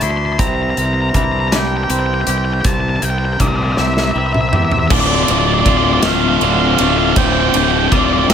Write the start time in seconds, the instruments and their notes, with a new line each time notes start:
Already playing: harmonium E3 D5 A5, clean electric guitar A3 D4, guzheng C4 D4 E4
0.01 fingered electric bass D2, clean electric guitar E4, lead electric guitar C6, closed hi-hat
0.10 lead electric guitar C6
0.17 lead electric guitar C6
0.26 lead electric guitar C6
0.33 lead electric guitar C6
0.39 fingered electric bass C2, clean electric guitar C3, guzheng C4, harmonium A#4 C5, lead electric guitar A#5, kick, closed hi-hat
0.48 lead electric guitar A#5
0.55 lead electric guitar A#5
0.63 lead electric guitar A#5
0.70 lead electric guitar A#5
0.77 fingered electric bass C2, lead electric guitar A#5, closed hi-hat
0.86 lead electric guitar A#5
0.94 lead electric guitar A#5
1.01 lead electric guitar A#5
1.09 lead electric guitar A#5
1.14 fingered electric bass C2, guzheng D4, clean electric guitar E4, lead electric guitar A#5, kick, closed hi-hat
1.24 lead electric guitar A#5
1.32 lead electric guitar A#5
1.40 lead electric guitar A#5
1.48 guzheng D4, clean electric guitar G4, lead electric guitar A#5
1.52 lead electric guitar G5, snare, closed hi-hat
1.59 lead electric guitar G5
1.67 lead electric guitar G5
1.77 lead electric guitar G5
1.84 lead electric guitar G5
1.89 fingered electric bass C2, guzheng C4, clean electric guitar C4, lead electric guitar G5, closed hi-hat
2.00 lead electric guitar G5
2.06 lead electric guitar G5
2.14 lead electric guitar G5
2.21 lead electric guitar G5
2.27 fingered electric bass C2, clean electric guitar G4, lead electric guitar G5, closed hi-hat
2.38 lead electric guitar G5
2.45 lead electric guitar G5
2.53 lead electric guitar G5
2.61 fingered electric bass C2, clean electric guitar C3, lead electric guitar G5, kick, closed hi-hat
2.65 lead electric guitar A5
2.74 lead electric guitar A5
2.80 lead electric guitar A5
2.89 lead electric guitar A5
2.96 lead electric guitar A5
3.02 fingered electric bass C2, lead electric guitar G5, closed hi-hat
3.10 lead electric guitar G5
3.18 lead electric guitar G5
3.25 lead electric guitar G5
3.33 lead electric guitar G5
3.40 fingered electric bass C2, guzheng D4, lead electric guitar D5 F5, kick, closed hi-hat
3.47 lead electric guitar D5 F5
3.56 lead electric guitar D5 F5
3.63 lead electric guitar D5 F5
3.72 lead electric guitar D5 F5
3.77 fingered electric bass C2, clean electric guitar G4, lead electric guitar E5, snare
3.87 lead electric guitar E5
3.94 lead electric guitar E5, snare
4.04 lead electric guitar E5
4.11 clean electric guitar C4, lead electric guitar E5
4.15 fingered electric bass C2, guzheng E4, lead electric guitar E5
4.26 lead electric guitar E5
4.33 lead electric guitar E5, mid tom
4.41 lead electric guitar E5
4.49 fingered electric bass E2, clean electric guitar G4, lead electric guitar E5, mid tom
4.56 lead electric guitar E5
4.65 lead electric guitar E5
4.72 lead electric guitar E5, floor tom
4.79 lead electric guitar E5
4.88 fingered electric bass D1, clean electric guitar D2, overdriven electric guitar D2 A2, guzheng D4, harmonium F4 D5 C6, lead electric guitar E5, kick, crash
4.92 overdriven electric guitar D3 A3 C4 F4, lead electric guitar D5
5.00 lead electric guitar D5
5.07 lead electric guitar D5
5.15 lead electric guitar D5
5.23 lead electric guitar D5
5.27 fingered electric bass D1, overdriven electric guitar D3 A3 C4 F4, lead electric guitar D5, ride
5.39 lead electric guitar D5
5.46 lead electric guitar D5
5.54 lead electric guitar D5
5.61 lead electric guitar D5
5.65 fingered electric bass D1, overdriven electric guitar D3 A3 C4 F4, clean electric guitar F4, guzheng F4, lead electric guitar D5, kick, ride
5.77 lead electric guitar D5
5.85 lead electric guitar D5
5.93 lead electric guitar D5
6.00 fingered electric bass D1, clean electric guitar A3, overdriven electric guitar F4, lead electric guitar D5, snare, ride
6.05 overdriven electric guitar D3 A3 C4, lead electric guitar F5
6.13 lead electric guitar F5
6.21 lead electric guitar F5
6.28 lead electric guitar F5
6.37 overdriven electric guitar D3, lead electric guitar F5
6.41 fingered electric bass D1, clean electric guitar D3, overdriven electric guitar A3 C4 F4, lead electric guitar F5, ride
6.52 lead electric guitar F5
6.60 lead electric guitar F5
6.67 lead electric guitar F5
6.75 clean electric guitar A3, guzheng D4, lead electric guitar F5, ride
6.79 fingered electric bass D1, overdriven electric guitar D3 A3 C4 F4, lead electric guitar F5
6.90 lead electric guitar F5
6.98 lead electric guitar F5
7.05 lead electric guitar F5
7.13 fingered electric bass D1, overdriven electric guitar D2, guzheng C4, lead electric guitar F5, kick, ride
7.17 clean electric guitar D2, overdriven electric guitar A2 D3 A3 C4 F4, harmonium D5, lead electric guitar G5
7.25 lead electric guitar G5
7.33 lead electric guitar G5
7.40 lead electric guitar G5
7.49 lead electric guitar G5
7.54 fingered electric bass D1, overdriven electric guitar A3 C4 F4, guzheng D4, lead electric guitar G5, ride
7.58 overdriven electric guitar D3
7.64 lead electric guitar G5
7.71 lead electric guitar G5
7.79 lead electric guitar G5
7.88 fingered electric bass D1, lead electric guitar G5
7.92 overdriven electric guitar D3 A3 C4 F4, clean electric guitar F4, lead electric guitar D5, kick, ride
7.99 lead electric guitar D5
8.06 lead electric guitar D5
8.13 lead electric guitar D5
8.19 lead electric guitar D5
8.29 fingered electric bass D1, clean electric guitar A3, guzheng C4, overdriven electric guitar C4 F4, lead electric guitar E5, snare, ride